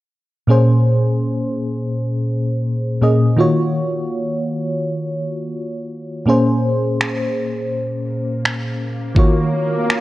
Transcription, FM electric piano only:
0.47 A#2 A#3 C#4 G#4 C5
3.01 A#2 A#3 C#4 G#4 D#5
3.37 D#3 A#3 F4 F#4 C#5
6.26 A#2 A#3 C#4 G#4 C5
9.15 D#3 A#3 F4 F#4 C#5

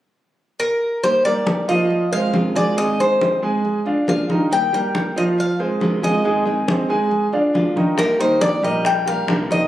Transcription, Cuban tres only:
0.60 A#4
1.03 C5
1.25 D5
1.69 D#5
2.13 F5
2.56 D5
2.78 D#5
3.00 C5
4.09 F5
4.53 G5
4.74 G5
5.18 D#5
5.40 F5
6.04 D#5
7.99 A#4
8.20 C5
8.41 D5
8.64 D#5
8.86 G5
9.07 F5
9.52 D#5

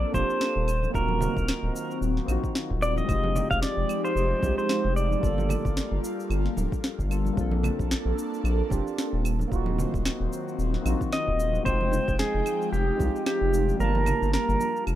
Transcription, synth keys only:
Already playing: A#3 C4 D4 F4 A4
0.12 A#3 C4 D4 F4 G4
0.90 A#3 C4 D#4
0.96 F4 F#4
2.24 A#3 C4 D#4
2.30 F4 F#4
3.05 G#3 C4 D#4
3.10 F4 G4
4.39 G#3 C4 D#4
4.44 F4 G4
5.19 G3 A#3 D4
5.25 F4 A4
7.08 G3 A#3 D4 F4 A4
7.33 A#3 C4 D4
7.39 F4 A4
8.69 A#3 C4 D4 F4 G4
9.48 A#3 C4 D#4
9.53 F4 F#4
10.82 A#3 C4 D#4
10.87 F4 F#4
11.62 G#3 C4 D#4
11.68 F4 G5
12.96 G#3 C4 D#4
13.02 F4 G4
13.77 G3 A#3 D4
13.82 F4 A5

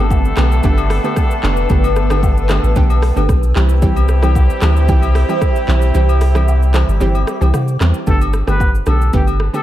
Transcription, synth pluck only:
Already playing: D3 A3
0.00 B3 G4
0.37 D3 A3 B3 G4
0.63 D3 A3 B3 G4
1.04 D3 A3 B3 G4
1.43 D3 A3 B3 G4
1.70 D3 A3 B3 G4
2.10 D3 A3 B3 G4
2.49 D3 A3 B3 G4
2.76 D3 A3 B3 G4
3.16 D3 A3 B3 G4
3.55 E3 G3 C4 G4
3.82 E3 G3 C4 G4
4.22 E3 G3 C4 G4
4.62 E3 G3 C4 G4
4.88 E3 G3 C4 G4
5.29 E3 G3 C4 G4
5.68 E3 G3 C4 G4
5.94 E3 G3 C4 G4
6.35 E3 G3 C4 G4
6.74 E3 G3 C4 G4
7.00 E3 G3 C4 G4
7.41 E3 G3 C4 G4
7.80 E3 G3 C4 G4
8.07 D3 A3 B3 G4
8.47 D3 A3 B3 G4
8.86 D3 A3 B3 G4
9.13 D3 A3 B3 G4
9.53 D3 A3 B3 G4

